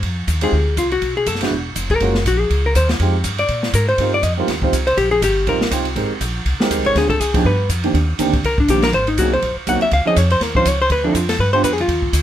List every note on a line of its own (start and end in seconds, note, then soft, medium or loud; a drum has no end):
0.03 0.27 F2 medium
0.03 kick soft
0.03 ride medium
0.27 0.52 D#2 medium
0.27 kick soft
0.27 hi-hat pedal medium
0.27 ride medium
0.41 0.52 G#3 medium
0.41 0.52 C4 medium
0.41 0.52 D#4 medium
0.41 0.52 F4 medium
0.41 0.52 G4 medium
0.41 0.76 G#4 medium
0.41 ride medium
0.52 0.76 D2 medium
0.52 kick soft
0.77 1.01 C2 medium
0.77 0.92 F4 medium
0.77 kick soft
0.77 hi-hat pedal medium
0.77 ride medium
0.91 1.15 F#4 medium
0.91 ride soft
1.02 1.26 B1 medium
1.02 kick soft
1.02 ride medium
1.17 1.27 G#4 medium
1.26 1.50 F#1 medium
1.26 1.41 A4 medium
1.26 kick soft
1.26 hi-hat pedal medium
1.26 ride medium
1.35 snare soft
1.41 1.50 G#3 medium
1.41 1.51 B3 medium
1.41 1.51 D4 medium
1.41 1.51 E4 medium
1.41 1.51 F#4 medium
1.41 snare soft
1.41 ride medium
1.51 1.75 E1 medium
1.51 kick soft
1.75 2.00 F1 medium
1.75 kick soft
1.75 hi-hat pedal medium
1.75 ride medium
1.90 2.23 A#4 loud
1.90 kick medium
1.90 ride soft
2.00 2.25 F#1 medium
2.00 2.13 G#3 medium
2.00 2.14 A#3 medium
2.00 2.14 C#4 medium
2.00 2.14 F4 medium
2.00 2.14 F#4 medium
2.00 kick soft
2.00 ride medium
2.15 snare soft
2.25 2.49 A#1 medium
2.25 2.40 F#4 medium
2.25 kick soft
2.25 hi-hat pedal medium
2.25 ride medium
2.40 2.64 G#4 medium
2.50 2.74 C#2 medium
2.50 kick soft
2.50 ride medium
2.66 2.76 A#4 medium
2.75 2.99 D#2 medium
2.75 2.89 C5 medium
2.75 kick soft
2.75 hi-hat pedal medium
2.75 ride medium
2.89 snare medium
2.89 ride soft
2.99 3.24 F2 medium
2.99 3.13 G#3 medium
2.99 3.13 C4 medium
2.99 3.13 D#4 medium
2.99 3.14 F4 medium
2.99 3.14 G4 medium
2.99 kick soft
2.99 ride medium
3.24 3.48 G2 medium
3.24 kick soft
3.24 hi-hat pedal medium
3.24 ride medium
3.38 3.72 D5 medium
3.38 ride soft
3.48 3.73 A#2 medium
3.48 kick soft
3.48 ride medium
3.63 snare soft
3.73 3.98 G#2 medium
3.73 3.88 A#4 medium
3.73 kick soft
3.73 hi-hat pedal medium
3.73 ride medium
3.89 4.11 C5 medium
3.98 4.22 G2 medium
3.98 4.11 G3 medium
3.98 4.12 C4 medium
3.98 4.12 D#4 medium
3.98 4.12 F4 medium
3.98 4.12 A#4 medium
3.98 kick soft
3.98 ride medium
4.14 4.24 D5 medium
4.23 4.47 F2 medium
4.23 4.32 D#5 loud
4.23 kick soft
4.23 hi-hat pedal medium
4.23 ride medium
4.37 4.47 G3 medium
4.37 4.47 C4 medium
4.37 4.47 D#4 medium
4.37 4.48 F4 medium
4.37 4.48 A#4 medium
4.47 4.72 D#2 medium
4.47 kick soft
4.47 snare soft
4.47 ride medium
4.62 4.72 G3 medium
4.62 4.72 C4 medium
4.62 4.72 D#4 medium
4.62 4.72 F4 medium
4.62 4.73 C5 medium
4.62 kick medium
4.72 4.97 C2 medium
4.72 kick soft
4.72 hi-hat pedal medium
4.72 ride medium
4.87 4.97 C5 loud
4.87 ride soft
4.97 5.21 A#1 medium
4.97 5.11 G4 medium
4.97 kick soft
4.97 ride medium
5.11 5.22 G#4 medium
5.22 5.46 G1 medium
5.22 5.46 G4 medium
5.22 kick soft
5.22 hi-hat pedal medium
5.22 ride medium
5.47 5.70 A#1 medium
5.47 5.60 G3 medium
5.47 5.60 C4 medium
5.47 5.60 D#4 medium
5.47 5.60 F4 medium
5.47 5.71 A#4 medium
5.47 5.61 A#4 medium
5.47 kick soft
5.47 ride medium
5.61 snare medium
5.71 5.95 C2 medium
5.71 5.84 G3 medium
5.71 5.84 C4 medium
5.71 5.84 D#4 medium
5.71 5.85 F4 medium
5.71 5.85 G4 medium
5.71 kick soft
5.71 hi-hat pedal medium
5.71 ride medium
5.85 ride soft
5.95 6.09 G#1 medium
5.95 6.08 G#3 medium
5.95 6.09 C4 medium
5.95 6.09 D#4 medium
5.95 6.09 G4 medium
5.95 6.09 A#4 medium
5.95 kick soft
5.95 ride medium
6.10 muted upright bass stroke soft
6.20 6.45 A#1 medium
6.20 kick soft
6.20 hi-hat pedal medium
6.20 ride medium
6.45 6.58 C2 medium
6.45 kick soft
6.45 ride medium
6.60 6.93 G#3 medium
6.60 6.93 C4 medium
6.60 6.94 D#4 medium
6.60 6.94 G4 medium
6.60 6.94 A#4 medium
6.60 snare medium
6.70 6.78 D#2 medium
6.70 kick soft
6.70 hi-hat pedal medium
6.70 ride medium
6.78 6.85 C2 medium
6.85 6.94 G#1 medium
6.85 6.96 C#5 loud
6.85 ride soft
6.95 7.19 D2 medium
6.95 7.08 G#3 soft
6.95 7.08 C4 soft
6.95 7.09 D4 soft
6.95 7.09 F4 soft
6.95 7.09 G#4 medium
6.95 kick soft
6.95 snare soft
6.95 ride medium
7.09 7.21 A4 loud
7.09 kick medium
7.09 ride soft
7.20 7.44 C2 medium
7.20 7.45 G#4 medium
7.20 kick soft
7.20 hi-hat pedal medium
7.20 ride medium
7.34 7.43 F3 medium
7.34 7.44 B3 medium
7.34 7.44 D4 medium
7.34 7.44 D#4 medium
7.34 7.44 G4 medium
7.34 kick medium
7.34 ride medium
7.45 7.68 G2 medium
7.45 7.68 B4 medium
7.69 7.93 F2 medium
7.69 kick soft
7.69 hi-hat pedal medium
7.69 ride medium
7.84 7.93 D#3 medium
7.84 7.93 A#3 medium
7.84 7.94 C4 medium
7.84 7.94 D4 medium
7.84 7.94 G4 medium
7.84 ride soft
7.94 8.18 D#2 medium
7.94 kick soft
7.94 ride medium
8.19 8.43 D2 medium
8.19 8.31 D#3 medium
8.19 8.31 A#3 medium
8.19 8.32 C4 medium
8.19 8.32 D4 medium
8.19 8.32 G4 medium
8.19 kick soft
8.19 hi-hat pedal medium
8.19 ride medium
8.33 kick medium
8.33 ride soft
8.44 8.68 C2 medium
8.44 8.58 A#4 medium
8.44 kick soft
8.44 ride medium
8.58 8.69 D4 medium
8.58 kick medium
8.68 8.92 A#1 medium
8.68 8.81 D#3 medium
8.68 8.81 A#3 medium
8.68 8.82 C4 medium
8.68 8.82 D4 medium
8.68 8.83 G4 medium
8.68 8.82 G4 medium
8.68 kick soft
8.68 hi-hat pedal medium
8.68 ride medium
8.82 8.93 A#4 loud
8.82 snare medium
8.82 ride soft
8.93 9.17 G#1 medium
8.93 9.07 C5 medium
8.93 kick soft
8.93 ride medium
9.07 9.18 D#4 medium
9.07 ride soft
9.18 9.41 C2 medium
9.18 9.31 F#3 medium
9.18 9.31 A#3 medium
9.18 9.31 C4 medium
9.18 9.32 D#4 medium
9.18 9.32 F#4 medium
9.18 9.32 G#4 medium
9.18 kick soft
9.18 hi-hat pedal medium
9.18 ride medium
9.33 9.55 C5 medium
9.42 9.55 A#1 medium
9.42 kick soft
9.42 ride medium
9.56 muted upright bass stroke soft
9.67 9.80 C2 medium
9.67 9.80 F#3 medium
9.67 9.80 A#3 medium
9.67 9.80 C4 medium
9.67 9.80 D#4 medium
9.67 9.81 F#4 medium
9.67 9.81 F#5 medium
9.67 kick soft
9.67 hi-hat pedal medium
9.67 ride medium
9.81 9.92 E5 medium
9.81 ride soft
9.91 10.05 C#2 medium
9.91 10.06 F5 medium
9.91 kick soft
9.91 ride medium
10.05 10.15 F3 medium
10.05 10.15 C4 medium
10.05 10.16 C#4 medium
10.05 10.16 D#4 medium
10.05 10.16 G#4 medium
10.05 10.18 D#5 medium
10.05 muted upright bass stroke soft
10.16 10.40 F2 medium
10.16 10.31 C#5 medium
10.16 kick soft
10.16 hi-hat pedal medium
10.16 ride medium
10.30 10.43 C5 medium
10.30 ride medium
10.40 10.65 D#2 medium
10.40 10.55 A#4 medium
10.40 kick soft
10.40 snare soft
10.40 ride medium
10.55 10.64 F3 medium
10.55 10.65 C4 medium
10.55 10.65 C#4 medium
10.55 10.65 D#4 medium
10.55 10.65 F4 medium
10.55 10.69 C5 medium
10.55 kick medium
10.65 10.89 C#2 medium
10.65 10.81 C#5 medium
10.65 kick soft
10.65 hi-hat pedal medium
10.65 ride medium
10.82 10.91 C5 medium
10.90 11.14 D2 medium
10.90 11.05 B4 medium
10.90 kick soft
10.90 ride medium
11.04 11.14 F3 medium
11.04 11.14 C4 medium
11.04 11.16 D4 soft
11.04 11.14 D4 medium
11.04 11.14 E4 medium
11.04 11.15 A4 medium
11.14 11.38 F2 medium
11.14 11.29 F4 medium
11.14 kick soft
11.14 hi-hat pedal medium
11.14 ride medium
11.29 11.39 A4 medium
11.29 snare soft
11.29 ride medium
11.39 11.63 G2 medium
11.39 11.53 B4 medium
11.39 kick soft
11.53 11.63 G3 medium
11.53 11.63 B3 medium
11.53 11.63 D4 medium
11.53 11.63 F4 medium
11.53 11.64 G4 medium
11.53 11.64 C5 loud
11.63 11.87 F2 medium
11.63 11.73 B4 medium
11.63 kick soft
11.63 hi-hat pedal medium
11.63 ride medium
11.73 11.81 G#4 medium
11.78 12.22 F4 medium
11.78 ride soft
11.88 12.12 D#2 medium
11.88 kick soft
11.88 ride medium
12.02 kick soft
12.13 12.22 D2 medium
12.13 kick soft
12.13 hi-hat pedal medium
12.13 ride medium